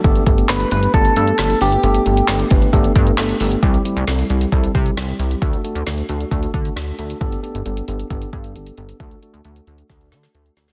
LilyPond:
<<
  \new Staff \with { instrumentName = "Clean electric guitar" } { \time 4/4 \key g \major \tempo 4 = 134 r4 b'8 b'8 a'8 a'4 g'8~ | g'4. r2 r8 | r1 | r1 |
r1 | r1 | }
  \new Staff \with { instrumentName = "Tine electric piano" } { \time 4/4 \key g \major <a b d' g' a'>8 <a b d' g' a'>8 <a b d' a'>8 <a b d' g'>8 <a b d' g' a'>8 <a b d' g' a'>8 <a b>8 <a b d' g' b'>8 | <a b d' g' a'>8 <a b d' g' a'>8 <a b d' g' a'>8 <a b d' g' b'>8 <a b d' g' a'>8 <a b d' g' a'>8 <a b d' g' a'>8 <a b d' g' a'>8 | <g c' e' g'>8 <g c' e' g'>8 <g c' e' a'>8 <g c' e' g'>8 <g c' e' a'>8 <g c' e' g'>8 <g c' e' g'>8 <g c' e' g'>8 | <a d' fis' a'>8 <a d' fis' a'>8 <a d' fis' a'>8 <a d' fis' a'>8 <a d' fis' a'>8 r8 <a d' fis' a'>8 <a d' fis' a'>8 |
<b d' g' a'>8 <b d' g' a'>8 <b d' g' a'>8 <b d' g' a'>8 <b d' g' a'>8 <b d' g' a'>8 <b d' g' a'>8 <b d' g' a'>8 | <a d' fis' a'>8 <a d' fis' a'>8 <a d' fis' a'>8 <a d' fis' a'>8 <a d' fis' a'>8 <a d' fis' a'>8 <a d' fis' a'>8 <a d' fis' a'>8 | }
  \new Staff \with { instrumentName = "Analog synth bass" } { \clef bass \time 4/4 \key g \major g,,8 g,,8 g,,8 g,,8 g,,8 g,8 g,,8 g,,8 | g,,8 g,,8 g,,8 g,,8 g,,8 g,8 g,,8 g,,8 | c,8 r16 c,16 c,8 c,8 c,8 c8 c,8 c,8 | d,8 r16 d,16 d,8 d,8 d,8 d8 d,8 d,8 |
g,,8 r16 g,,16 g,,8 g,,8 g,,8 g,8 g,,8 g,,8 | d,8 r16 d,16 d,8 d,8 d,8 d8 d,8 d,8 | }
  \new DrumStaff \with { instrumentName = "Drums" } \drummode { \time 4/4 <hh bd>16 hh16 <hh bd>16 hh16 <hc hh sn>16 hh16 hh16 hh16 <hh bd>16 hh16 hh16 hh16 <hc hh sn>16 hh16 hho16 hh16 | hh16 hh16 hh16 hh16 <hc hh sn>16 hh16 <hh bd>16 hh16 <hh bd>16 hh16 <hh bd>16 hh16 <hc hh sn>16 hh16 hho16 hh16 | <hh bd>16 hh16 hh16 hh16 <hh sn>16 hh16 hh16 hh16 <hh bd>16 hh16 <hh bd>16 hh16 <hh sn>16 hh16 hh16 hh16 | <hh bd>16 hh16 hh16 hh16 <hh sn>16 hh16 hh16 hh16 <hh bd>16 hh16 <hh bd>16 hh16 <hh sn>16 hh16 hh16 hh16 |
<hh bd>16 hh16 hh16 hh16 hh16 hh16 hh16 hh16 <hh bd>16 hh16 <hh bd>16 hh16 hh16 hh16 hh16 hh16 | <hh bd>16 hh16 hh16 hh16 hh16 hh16 hh16 hh16 <hh bd sn>16 hh16 <hh sn>16 <hh sn>16 hh16 hh16 <hh sn>16 <hh sn>16 | }
>>